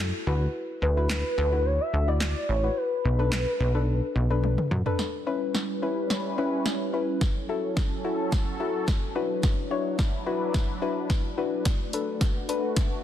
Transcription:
Already playing: F#2 E4 F#4 A4
0.27 D2 E4 F#4 B4
0.82 D2 B4
0.97 E4 F#4 B4
1.10 snare, clap
1.38 D2
1.52 E4 F#4 B4
1.66 C#5
1.81 E5
1.93 D2
2.08 E4 F#4 D5
2.21 D5, snare, clap
2.49 A1 C#5
2.63 E4 F#4 B4
2.77 B4
3.05 B1
3.19 D4 A4 B4
3.32 snare, clap
3.60 B1
3.75 D4 A4 B4
4.16 B1
4.30 D4 A4 B4
4.44 high tom
4.58 mid tom
4.71 F#2, mid tom
4.86 D4 A4 B4, floor tom
4.99 G3 C#4 E4 B4, snare
5.26 C#4 E4 B4
5.55 snare
5.82 C#4 E4 B4
6.10 snare
6.38 C#4 E4 B4
6.66 snare
6.93 C#4 E4 B4
7.21 F#3 C#4 A4, kick, snare
7.49 E4 F#4 A4
7.77 kick, snare
8.04 E4 F#4 A4
8.32 kick, snare
8.60 E4 F#4 A4
8.88 kick, snare
9.15 F#3 D4 E4 F#4 B4
9.43 kick, snare
9.71 D4 E4 F#4 C#5
9.99 kick, snare
10.26 D4 E4 F#4 B4
10.54 kick, snare
10.82 D4 E4 F#4 B4
11.10 kick, snare
11.37 D4 E4 F#4 B4
11.65 A3 F#4, kick, snare, closed hi-hat
11.93 D4 A4 B4, closed hi-hat
12.21 kick, snare, closed hi-hat
12.49 D4 A4 B4, closed hi-hat
12.76 kick, snare, closed hi-hat

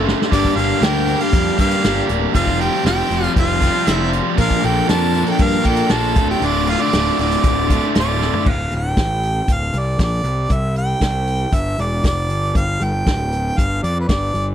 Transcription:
Already playing: F#1 A2 D3 A3 F4
0.04 D3 A3 F4
0.08 snare
0.22 snare
0.32 G1 G2 D3 G3 A#3 D4 G4 D5, kick, closed hi-hat, splash
0.45 kick
0.56 G1 A#3 D4 G4 F5, closed hi-hat
0.60 G3
0.81 D2 G2 D3 G3 A#3 D4 G4 A#4 G5, snare, closed hi-hat
1.07 G3 A#3 D4 G4, closed hi-hat
1.21 G4 F5, closed hi-hat
1.33 F2, kick, closed hi-hat
1.58 G2 G3 A#3 D4 G4 F5, kick, closed hi-hat
1.62 G4
1.71 closed hi-hat
1.84 G1 G3 A#3 D4 G4, snare, closed hi-hat
2.07 D1 G3 A#3 D4 G4, closed hi-hat
2.35 F1 F2 C3 F3 G3 C4 F4 F5, kick, closed hi-hat
2.47 kick
2.60 F3 G3 C4 F4 G4 G5, closed hi-hat
2.85 F1 F2 C3 F3 G3 C4 F4 G4 G5, snare, closed hi-hat
3.10 F1 G3 C4 F4, closed hi-hat
3.15 F3
3.24 closed hi-hat
3.36 F1 F4 F5, kick, closed hi-hat
3.62 F3 G3 C4 F4, kick, closed hi-hat
3.87 F1 F3 G3 C4 E4 F4 E5, snare, closed hi-hat
4.09 F3 G3 C4 F4, closed hi-hat
4.37 A#1 A#2 F3 A#3 D4 F4 A#4 F5, kick, closed hi-hat
4.51 kick
4.63 A#1 A#3 D4 F4 A4 A#4 G5, closed hi-hat
4.88 F2 A#2 F3 A#3 D4 F4 A#4 A5, snare, closed hi-hat
5.14 A#3 D4 F4 A#4, closed hi-hat
5.27 A4 G5, closed hi-hat
5.39 G2 A#4 F5, kick, closed hi-hat
5.64 A#2 A#3 D4 F4 A4 A#4 G5, kick, closed hi-hat
5.77 closed hi-hat
5.89 A#1 A#3 D4 A4 A5, snare, closed hi-hat
5.93 F4 A#4
6.15 D1 D2 A2 D3 A3 F4, kick, closed hi-hat
6.30 G4 G5
6.42 D1 D2 A2 D3 A3 D4 F4 D5, closed hi-hat
6.67 A3 F4 F5, closed hi-hat
6.71 D3
6.81 D4 D5
6.93 D1 D2 A2 D3 A3 F4, snare, closed hi-hat
7.19 D1 D3 A3 D4 F4 D5, closed hi-hat
7.31 snare, closed hi-hat
7.44 D1, kick, closed hi-hat
7.70 D3 A3 F4, kick, closed hi-hat
7.95 D1 A2 D3 A3 F4, snare, closed hi-hat
8.00 D5
8.19 D3 A3 F4, snare
8.33 floor tom
8.46 D1 F5, kick, crash
8.71 D1 G5, closed hi-hat
8.97 A1, kick, snare, closed hi-hat
9.23 closed hi-hat
9.48 D1, kick, closed hi-hat
9.53 F5
9.73 C2, closed hi-hat
9.79 D5
9.99 A#1, kick, snare, closed hi-hat
10.04 D5
10.23 C2, closed hi-hat
10.50 C2 E5, kick, closed hi-hat
10.76 G5, closed hi-hat
11.01 C2, kick, snare, closed hi-hat
11.28 closed hi-hat
11.52 G1 E5, kick, closed hi-hat
11.78 E1 D5, closed hi-hat
12.04 F1 D5, kick, snare, closed hi-hat
12.30 G1, closed hi-hat
12.55 G1 F5, kick, closed hi-hat
12.81 G1 G5, closed hi-hat
13.07 D1, kick, snare, closed hi-hat
13.32 closed hi-hat
13.58 G1 F5, kick, closed hi-hat
13.83 F2 D5, closed hi-hat
14.00 B4
14.08 G1 D5, kick, snare, closed hi-hat
14.34 G1, closed hi-hat

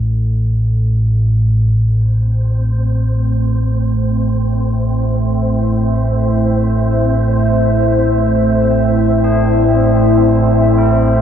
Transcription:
Already playing: A1 A2
1.72 A2 A3 C4 C5
1.76 A1
3.09 E4
3.39 E5
4.41 C5
9.24 D4
10.78 E4

